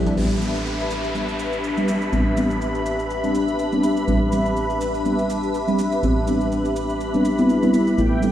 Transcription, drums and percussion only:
0.06 snare, closed hi-hat, shaker
0.17 crash, shaker
0.42 shaker
0.55 shaker
0.66 shaker
0.80 shaker
0.91 shaker
1.04 shaker
1.15 shaker
1.28 shaker
1.39 shaker
1.53 shaker
1.64 shaker
1.77 shaker
1.88 shaker
2.02 shaker
2.13 shaker
2.37 shaker
2.50 shaker
2.61 shaker
2.75 shaker
2.86 shaker
2.99 shaker
3.10 shaker
3.24 shaker
3.35 shaker
3.48 shaker
3.59 shaker
3.72 shaker
3.83 shaker
3.97 shaker
4.08 shaker
4.32 shaker
4.45 shaker
4.57 shaker
4.70 shaker
4.81 shaker
4.94 shaker
5.05 shaker
5.19 shaker
5.30 shaker
5.43 shaker
5.54 shaker
5.68 shaker
5.79 shaker
5.92 shaker
6.03 shaker
6.27 shaker
6.41 shaker
6.52 shaker
6.65 shaker
6.76 shaker
6.89 shaker
7.01 shaker
7.14 shaker
7.25 shaker
7.38 shaker
7.49 shaker
7.63 shaker
7.74 shaker
7.87 shaker
7.98 shaker
8.22 shaker

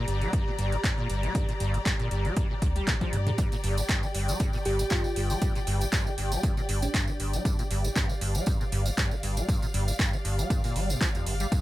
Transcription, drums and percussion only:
0.08 closed hi-hat
0.22 closed hi-hat
0.33 kick, closed hi-hat
0.59 closed hi-hat
0.72 closed hi-hat
0.84 kick, clap, closed hi-hat
1.10 closed hi-hat
1.23 closed hi-hat
1.35 kick, closed hi-hat
1.49 closed hi-hat
1.60 closed hi-hat
1.74 closed hi-hat
1.86 kick, clap, closed hi-hat
2.00 closed hi-hat
2.11 closed hi-hat
2.25 closed hi-hat
2.37 kick, closed hi-hat
2.62 kick, closed hi-hat
2.76 closed hi-hat
2.87 kick, clap, closed hi-hat, high tom
3.01 kick, closed hi-hat, high tom
3.13 closed hi-hat
3.27 closed hi-hat, mid tom
3.38 kick, closed hi-hat, tambourine
3.52 closed hi-hat, tambourine
3.64 open hi-hat
3.77 closed hi-hat, tambourine
3.89 kick, clap, closed hi-hat, tambourine
4.03 tambourine
4.15 open hi-hat
4.28 closed hi-hat, tambourine
4.40 kick, closed hi-hat, tambourine
4.53 tambourine
4.65 open hi-hat
4.79 closed hi-hat, tambourine
4.90 kick, clap, closed hi-hat, tambourine
5.04 tambourine
5.16 open hi-hat
5.30 closed hi-hat, tambourine
5.42 kick, closed hi-hat, tambourine
5.55 closed hi-hat, tambourine
5.67 open hi-hat
5.81 closed hi-hat, tambourine
5.92 kick, clap, closed hi-hat, tambourine
6.07 tambourine
6.18 open hi-hat
6.32 closed hi-hat, tambourine
6.43 kick, closed hi-hat, tambourine
6.57 tambourine
6.69 open hi-hat
6.82 closed hi-hat, tambourine
6.94 kick, clap, closed hi-hat, tambourine
7.08 tambourine
7.20 open hi-hat
7.33 closed hi-hat, tambourine
7.45 kick, closed hi-hat, tambourine
7.59 closed hi-hat, tambourine
7.71 open hi-hat
7.84 closed hi-hat, tambourine
7.96 kick, clap, closed hi-hat, tambourine
8.09 tambourine
8.21 open hi-hat
8.35 closed hi-hat, tambourine
8.46 kick, closed hi-hat, tambourine
8.61 tambourine
8.72 open hi-hat
8.86 closed hi-hat, tambourine
8.97 kick, clap, closed hi-hat, tambourine
9.11 tambourine
9.23 open hi-hat
9.37 closed hi-hat, tambourine
9.49 kick, closed hi-hat, tambourine
9.62 closed hi-hat, tambourine
9.74 open hi-hat
9.88 closed hi-hat, tambourine
9.99 kick, clap, closed hi-hat, tambourine
10.13 tambourine
10.25 open hi-hat
10.39 closed hi-hat, tambourine
10.50 kick, closed hi-hat, tambourine
10.64 open hi-hat, tambourine
10.76 open hi-hat
10.89 closed hi-hat, tambourine
11.01 kick, clap, closed hi-hat, tambourine
11.15 closed hi-hat, tambourine
11.26 open hi-hat
11.40 closed hi-hat, tambourine
11.52 kick, closed hi-hat, tambourine

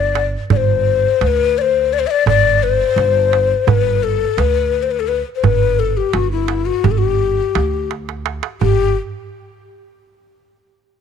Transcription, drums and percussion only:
0.15 darbuka tek
0.50 darbuka dum
1.21 darbuka tek
1.39 darbuka ka
1.92 darbuka ka
2.27 darbuka dum
2.98 darbuka tek
3.33 darbuka tek
3.68 darbuka dum
4.38 darbuka tek
4.55 darbuka ka
5.09 darbuka ka
5.44 darbuka dum
5.79 darbuka ka
6.13 darbuka tek
6.48 darbuka tek
6.67 darbuka ka
6.84 darbuka dum
7.55 darbuka tek
7.73 darbuka ka
7.91 darbuka tek
8.09 darbuka ka
8.26 darbuka tek
8.43 darbuka ka
8.61 darbuka dum

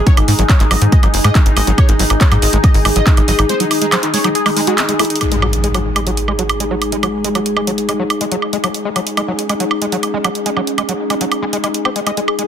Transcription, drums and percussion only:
0.07 kick, closed hi-hat
0.17 closed hi-hat, high woodblock
0.28 open hi-hat
0.39 closed hi-hat
0.49 kick, clap, closed hi-hat, high woodblock
0.60 clap, closed hi-hat
0.71 open hi-hat, high woodblock
0.82 closed hi-hat
0.92 kick, closed hi-hat
1.03 closed hi-hat, high woodblock
1.14 open hi-hat
1.24 closed hi-hat, high woodblock
1.35 kick, clap, closed hi-hat
1.46 closed hi-hat
1.57 open hi-hat, high woodblock
1.67 closed hi-hat
1.78 kick, closed hi-hat, high woodblock
1.89 closed hi-hat
1.99 open hi-hat
2.10 closed hi-hat, high woodblock
2.21 kick, clap, closed hi-hat
2.32 closed hi-hat, high woodblock
2.42 open hi-hat
2.53 closed hi-hat
2.64 kick, closed hi-hat, high woodblock
2.74 open hi-hat
2.85 open hi-hat, high woodblock
2.96 closed hi-hat
3.07 kick, clap, closed hi-hat
3.17 closed hi-hat, high woodblock
3.28 open hi-hat
3.39 closed hi-hat, high woodblock
3.49 closed hi-hat
3.60 closed hi-hat
3.71 open hi-hat, high woodblock
3.82 closed hi-hat
3.92 clap, closed hi-hat, high woodblock
4.03 clap, closed hi-hat
4.14 open hi-hat
4.24 closed hi-hat, high woodblock
4.35 closed hi-hat
4.46 open hi-hat, high woodblock
4.57 open hi-hat
4.67 closed hi-hat
4.78 clap, closed hi-hat, high woodblock
4.89 closed hi-hat
4.99 closed hi-hat, open hi-hat, high woodblock
5.05 closed hi-hat
5.10 closed hi-hat
5.16 closed hi-hat
5.21 closed hi-hat, high woodblock
5.32 closed hi-hat
5.42 high woodblock
5.53 closed hi-hat
5.64 closed hi-hat
5.75 closed hi-hat, high woodblock
5.96 closed hi-hat, high woodblock
6.07 closed hi-hat
6.17 closed hi-hat
6.28 high woodblock
6.39 closed hi-hat
6.49 closed hi-hat, high woodblock
6.60 closed hi-hat
6.82 closed hi-hat, high woodblock
6.92 closed hi-hat
7.03 closed hi-hat, high woodblock
7.24 closed hi-hat
7.35 closed hi-hat, high woodblock
7.46 closed hi-hat
7.57 high woodblock
7.67 closed hi-hat
7.78 closed hi-hat
7.89 closed hi-hat, high woodblock
8.10 closed hi-hat, high woodblock
8.21 closed hi-hat
8.32 closed hi-hat
8.42 high woodblock
8.53 closed hi-hat
8.64 closed hi-hat, high woodblock
8.74 closed hi-hat
8.96 closed hi-hat, high woodblock
9.07 closed hi-hat
9.17 closed hi-hat, high woodblock
9.39 closed hi-hat
9.49 closed hi-hat, high woodblock
9.60 closed hi-hat
9.71 high woodblock
9.82 closed hi-hat
9.92 closed hi-hat
10.03 closed hi-hat, high woodblock
10.24 closed hi-hat, high woodblock
10.35 closed hi-hat
10.46 closed hi-hat
10.57 high woodblock
10.67 closed hi-hat
10.78 closed hi-hat, high woodblock
10.89 closed hi-hat
11.10 closed hi-hat, high woodblock
11.21 closed hi-hat
11.32 closed hi-hat, high woodblock
11.53 closed hi-hat
11.64 closed hi-hat, high woodblock
11.74 closed hi-hat
11.85 high woodblock
11.96 closed hi-hat
12.07 closed hi-hat, high woodblock
12.17 closed hi-hat
12.28 high woodblock
12.39 closed hi-hat

